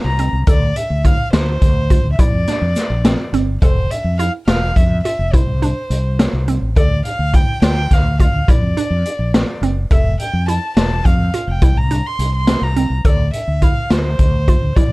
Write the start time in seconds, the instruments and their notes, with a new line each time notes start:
0.04 fretless electric bass C2, violin A#5
0.19 synth arpeggio sound C4, closed hi-hat
0.33 fretless electric bass C2
0.47 fretless electric bass D2, synth arpeggio sound A4, violin D5, kick, closed hi-hat, shaker
0.76 violin E5, closed hi-hat, shaker
0.90 fretless electric bass D2
1.05 synth arpeggio sound E4, violin F5, kick, closed hi-hat
1.33 fretless electric bass D2, synth arpeggio sound F4, violin C5, snare, closed hi-hat, shaker
1.62 fretless electric bass D2, kick, closed hi-hat
1.90 synth arpeggio sound F4, kick, closed hi-hat, shaker
2.04 fretless electric bass D2
2.12 violin E5
2.19 fretless electric bass A#1, synth arpeggio sound E4, violin D5, kick, closed hi-hat
2.33 fretless electric bass F2
2.47 synth arpeggio sound D4, snare, closed hi-hat, shaker
2.62 fretless electric bass F2
2.76 snare, closed hi-hat, shaker
2.90 fretless electric bass A#1
3.05 synth arpeggio sound C4, snare, closed hi-hat, shaker
3.33 fretless electric bass G1, synth arpeggio sound C4, closed hi-hat
3.62 fretless electric bass F1, synth arpeggio sound A4, violin C5, kick, closed hi-hat
3.90 violin E5, closed hi-hat
4.04 fretless electric bass F2
4.19 synth arpeggio sound E4, violin F5, closed hi-hat
4.47 fretless electric bass E1, synth arpeggio sound F4, violin F5, snare, closed hi-hat
4.75 fretless electric bass F2, violin E5, kick, closed hi-hat
5.04 synth arpeggio sound F4, violin E5, closed hi-hat
5.19 fretless electric bass F1
5.32 fretless electric bass C2, synth arpeggio sound E4, violin C5, kick, closed hi-hat
5.47 fretless electric bass C2
5.62 synth arpeggio sound D4, closed hi-hat
5.90 fretless electric bass C2, closed hi-hat
6.19 synth arpeggio sound C4, snare, closed hi-hat
6.33 fretless electric bass C2
6.48 synth arpeggio sound C4, closed hi-hat
6.61 fretless electric bass A1
6.76 fretless electric bass D2, synth arpeggio sound A4, violin D5, kick, closed hi-hat
7.05 violin F5, closed hi-hat
7.19 fretless electric bass D2
7.34 synth arpeggio sound E4, violin G5, kick, closed hi-hat
7.62 fretless electric bass D2, synth arpeggio sound F4, violin G5, snare, closed hi-hat
7.91 fretless electric bass D2, violin F5, kick, snare, closed hi-hat
8.20 synth arpeggio sound F4, violin F5, kick, closed hi-hat
8.33 fretless electric bass D2
8.48 fretless electric bass A#1, synth arpeggio sound E4, violin D5, kick, closed hi-hat
8.62 fretless electric bass F2
8.77 synth arpeggio sound D4, closed hi-hat
8.91 fretless electric bass F2
9.06 closed hi-hat
9.19 fretless electric bass A#1
9.34 synth arpeggio sound C4, snare, closed hi-hat
9.62 fretless electric bass F#1, synth arpeggio sound C4, closed hi-hat
9.91 fretless electric bass F1, synth arpeggio sound A4, violin E5, kick, closed hi-hat
10.20 violin G5, closed hi-hat
10.33 fretless electric bass F2
10.48 synth arpeggio sound E4, violin A5, closed hi-hat
10.76 fretless electric bass E1, synth arpeggio sound F4, violin A5, snare, closed hi-hat
11.05 fretless electric bass F2, violin F5, kick, closed hi-hat
11.34 synth arpeggio sound F4, closed hi-hat
11.47 fretless electric bass F1, violin G5
11.62 fretless electric bass C2, synth arpeggio sound E4, kick, closed hi-hat
11.76 fretless electric bass C2, violin A#5
11.91 synth arpeggio sound D4, closed hi-hat
12.06 violin C6
12.19 fretless electric bass C2, closed hi-hat
12.35 violin C6
12.47 synth arpeggio sound C4, snare, closed hi-hat
12.62 fretless electric bass C2, violin A#5
12.76 synth arpeggio sound C4, closed hi-hat
12.90 fretless electric bass C2
13.04 fretless electric bass D2, synth arpeggio sound A4, violin D5, kick, closed hi-hat
13.33 violin E5, closed hi-hat
13.48 fretless electric bass D2
13.62 synth arpeggio sound E4, violin F5, kick, closed hi-hat
13.90 fretless electric bass D2, synth arpeggio sound F4, violin C5, snare, closed hi-hat
14.19 fretless electric bass D2, kick, closed hi-hat
14.48 synth arpeggio sound F4, kick, closed hi-hat
14.62 fretless electric bass D2
14.76 fretless electric bass A#1, synth arpeggio sound E4, violin D5, kick, closed hi-hat